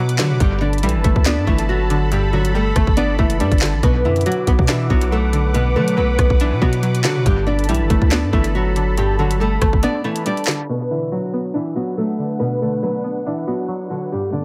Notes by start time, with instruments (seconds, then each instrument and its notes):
Already playing: 808-style bass B2, nylon-string guitar F#3 F#4, synth pluck F#3 B3 D4, analog synth pad B4 F#5 D6
0.09 closed hi-hat
0.18 808-style bass D3, synth pluck D3, nylon-string guitar F#3 F#4, snare, clap, closed hi-hat
0.30 808-style bass B2
0.40 808-style bass G1, synth pluck G2, nylon-string guitar G3 G4, analog synth pad A4 A5 B5, kick, closed hi-hat
0.61 synth pluck D3, nylon-string guitar D4 D5
0.73 closed hi-hat
0.78 closed hi-hat
0.83 808-style bass B1, nylon-string guitar E3 E4, synth pluck G3, closed hi-hat
0.89 closed hi-hat
0.95 808-style bass G1
1.04 808-style bass G1, synth pluck A3, kick, closed hi-hat
1.16 808-style bass D2, kick
1.26 synth pluck B3, nylon-string guitar D4 D5, snare, clap, closed hi-hat
1.37 808-style bass G2
1.47 808-style bass G1, nylon-string guitar E3 E4, synth pluck A3, kick
1.58 closed hi-hat
1.69 nylon-string guitar F#3 F#4
1.90 synth pluck D3, closed hi-hat
2.12 synth pluck G2, nylon-string guitar G3 G4, closed hi-hat
2.33 synth pluck D3, nylon-string guitar F#3 F#4
2.45 closed hi-hat
2.54 synth pluck G3, nylon-string guitar A3 A4
2.76 808-style bass G1, synth pluck A3, kick, cross-stick, closed hi-hat
2.87 808-style bass G1, kick
2.97 synth pluck B3, nylon-string guitar D4 D5, closed hi-hat
3.19 808-style bass F#1, nylon-string guitar E3 E4, synth pluck A3, kick
3.30 closed hi-hat
3.40 808-style bass G2, synth pluck G3, nylon-string guitar D4 D5, closed hi-hat
3.52 808-style bass G1, kick, closed hi-hat
3.58 synth pluck D3, snare, clap, closed hi-hat, open hi-hat
3.66 closed hi-hat
3.73 808-style bass A1
3.83 808-style bass B1, synth pluck B2, nylon-string guitar B3 B4, analog synth pad B4 F#5 D6, kick, closed hi-hat
4.05 808-style bass F#2, synth pluck D3, nylon-string guitar E3 E4
4.16 closed hi-hat
4.21 closed hi-hat
4.26 synth pluck F#3, nylon-string guitar F#3 F#4, closed hi-hat
4.32 closed hi-hat
4.47 808-style bass B1, synth pluck B3, kick, closed hi-hat
4.59 808-style bass B2, kick
4.68 nylon-string guitar E3 E4, synth pluck D4, snare, clap, closed hi-hat
4.90 808-style bass B1, nylon-string guitar F#3 F#4, synth pluck B3, kick
5.01 closed hi-hat
5.11 synth pluck F#3, nylon-string guitar A3 A4
5.33 synth pluck D3, closed hi-hat
5.54 synth pluck B2, nylon-string guitar B3 B4, closed hi-hat
5.76 synth pluck D3, 808-style bass F#3, nylon-string guitar A3 A4
5.88 closed hi-hat
5.97 808-style bass B1, synth pluck F#3, nylon-string guitar B3 B4
6.18 808-style bass B1, synth pluck B3, kick, cross-stick, closed hi-hat
6.30 808-style bass B1, kick
6.40 nylon-string guitar E3 E4, synth pluck D4, closed hi-hat
6.52 808-style bass B2
6.62 808-style bass B2, nylon-string guitar F#3 F#4, synth pluck B3, kick
6.73 closed hi-hat
6.83 synth pluck F#3, closed hi-hat
6.95 closed hi-hat
7.04 808-style bass D3, synth pluck D3, nylon-string guitar F#3 F#4, snare, clap, closed hi-hat
7.16 808-style bass B2
7.26 808-style bass G1, synth pluck G2, nylon-string guitar G3 G4, analog synth pad A4 A5 B5, kick, closed hi-hat
7.47 synth pluck D3, nylon-string guitar D4 D5
7.59 closed hi-hat
7.64 closed hi-hat
7.69 808-style bass B1, nylon-string guitar E3 E4, synth pluck G3, closed hi-hat
7.75 closed hi-hat
7.80 808-style bass G1
7.90 808-style bass G1, synth pluck A3, kick, closed hi-hat
8.02 808-style bass D2, kick
8.11 synth pluck B3, nylon-string guitar D4 D5, snare, clap, closed hi-hat
8.23 808-style bass G2
8.33 808-style bass G1, nylon-string guitar E3 E4, synth pluck A3, kick
8.44 closed hi-hat
8.55 nylon-string guitar F#3 F#4
8.76 synth pluck D3, closed hi-hat
8.97 synth pluck G2, nylon-string guitar G3 G4, closed hi-hat
9.19 synth pluck D3, nylon-string guitar F#3 F#4
9.31 closed hi-hat
9.40 synth pluck G3, nylon-string guitar A3 A4
9.61 808-style bass G1, synth pluck A3, kick, cross-stick, closed hi-hat
9.73 808-style bass G1, kick
9.83 synth pluck B3, nylon-string guitar D4 D5, closed hi-hat
10.04 nylon-string guitar E3 E4, synth pluck A3
10.16 closed hi-hat
10.26 synth pluck G3, nylon-string guitar D4 D5, closed hi-hat
10.37 closed hi-hat
10.44 synth pluck D3, snare, clap, closed hi-hat, open hi-hat
10.51 closed hi-hat
10.69 synth pluck B2, nylon-string guitar B3 B4, analog synth pad D4 B4 F#5
10.91 synth pluck D3, nylon-string guitar E3 E4
11.12 synth pluck F#3, nylon-string guitar F#3 F#4
11.34 synth pluck B3
11.54 nylon-string guitar E3 E4, synth pluck D4
11.76 nylon-string guitar F#3 F#4, synth pluck B3
11.97 synth pluck F#3, nylon-string guitar A3 A4
12.19 synth pluck D3
12.40 synth pluck B2, nylon-string guitar B3 B4
12.62 synth pluck D3, nylon-string guitar A3 A4
12.83 synth pluck F#3, nylon-string guitar B3 B4
13.04 synth pluck B3
13.26 nylon-string guitar E3 E4, synth pluck D4
13.47 nylon-string guitar F#3 F#4, synth pluck B3
13.68 synth pluck F#3
13.90 synth pluck D3, nylon-string guitar F#3 F#4
14.12 synth pluck G2, nylon-string guitar G3 G4, analog synth pad B3 A4 A5
14.32 synth pluck D3, nylon-string guitar D4 D5